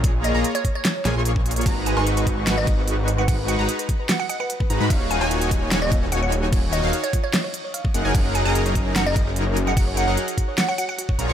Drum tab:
CC |--------------------------------|x---------------x---------------|x---------------x---------------|x---------------x---------------|
HH |x---x---x-x-x---x---x---x---xxxx|x---x---x-x-x---x---x---x---x---|x---x---x-x-x---x---x---x---x---|x---x---x-x-x---x---x---x---x---|
SD |----------------o---o-----------|----------------o---------------|----------------o---------------|----------------o---------------|
BD |o-----------o-------------o-----|o-----------o-------o-----------|o-----------o-------------o-----|o-----------o-------o-----------|

CC |x---------------x---------------|x---------------x---------------|x---------------x---------------|
HH |x---x---x-x-x---x---x---x---x---|x---x---x-x-x---x---x---x---x---|x---x---x-x-x---x---x---x---x---|
SD |----------------o---------------|----------------o---------------|----------------o---------------|
BD |o-----------o-------------o-----|o-----------o-------o-----------|o-----------o-------------o-----|